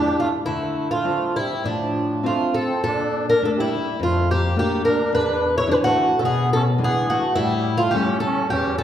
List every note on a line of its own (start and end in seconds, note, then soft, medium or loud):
0.00 0.35 A3 soft
0.00 0.17 D4 medium
0.00 0.35 D4 soft
0.00 0.36 E4 soft
0.00 0.19 G4 medium
0.20 0.33 A3 medium
0.20 0.27 F4 medium
0.46 1.03 D3 medium
0.46 0.88 A3 medium
0.46 0.91 E4 medium
0.91 1.33 A3 medium
0.91 1.36 F4 medium
1.04 1.52 C4 soft
1.04 1.52 D4 soft
1.04 1.52 F4 soft
1.36 1.63 G3 medium
1.36 1.66 E4 medium
1.64 2.22 A2 medium
1.64 2.21 F3 medium
1.64 2.26 D4 medium
2.23 2.53 A3 medium
2.23 2.72 C4 soft
2.23 2.72 D4 soft
2.23 2.72 F4 soft
2.23 2.56 F4 medium
2.54 2.84 C4 medium
2.54 2.82 A4 medium
2.83 3.41 A#2 medium
2.83 3.26 D4 medium
2.83 3.25 A4 medium
3.29 3.41 D4 medium
3.29 3.44 A#4 medium
3.42 3.89 A3 soft
3.42 3.89 A#3 soft
3.42 3.50 D4 medium
3.42 3.89 D4 medium
3.42 3.50 A4 medium
3.56 3.97 G3 medium
3.56 3.99 E4 medium
3.99 4.55 F2 medium
3.99 4.27 A3 medium
3.99 4.28 F4 medium
4.28 4.55 A#3 medium
4.28 4.58 G4 medium
4.56 5.02 A3 soft
4.56 5.02 A#3 soft
4.56 4.83 A#3 medium
4.56 5.02 D4 soft
4.56 4.84 G4 medium
4.84 5.11 D4 medium
4.84 5.14 A#4 medium
5.12 5.67 E2 medium
5.12 5.52 D4 medium
5.12 5.57 B4 medium
5.56 5.68 E4 medium
5.56 5.70 C#5 medium
5.68 6.12 E3 soft
5.68 6.13 D4 medium
5.68 5.75 D4 medium
5.68 6.12 G#4 soft
5.68 5.76 B4 medium
5.84 6.16 A3 medium
5.84 6.19 F#4 medium
6.18 6.24 C#4 medium
6.18 6.25 A4 medium
6.23 6.78 B2 medium
6.23 6.50 B3 medium
6.23 6.53 G#4 medium
6.53 6.66 C#4 medium
6.53 6.61 A4 medium
6.78 7.24 E3 soft
6.78 7.24 G#3 soft
6.78 7.07 B3 medium
6.78 7.24 D4 soft
6.84 7.11 G#4 medium
7.09 7.35 A3 medium
7.09 7.38 F#4 medium
7.36 7.91 A2 medium
7.36 7.76 G3 medium
7.36 7.79 E4 loud
7.78 7.93 A3 medium
7.78 7.93 F4 medium
7.91 8.39 G3 medium
7.91 8.39 A3 soft
7.91 8.19 C#4 medium
7.91 8.39 C#4 medium
7.91 8.20 G4 medium
8.20 8.49 C#4 medium
8.20 8.50 A4 medium
8.50 8.83 E2 medium
8.50 8.76 C#4 medium
8.50 8.78 G4 medium
8.78 8.83 C#4 medium
8.78 8.83 A4 medium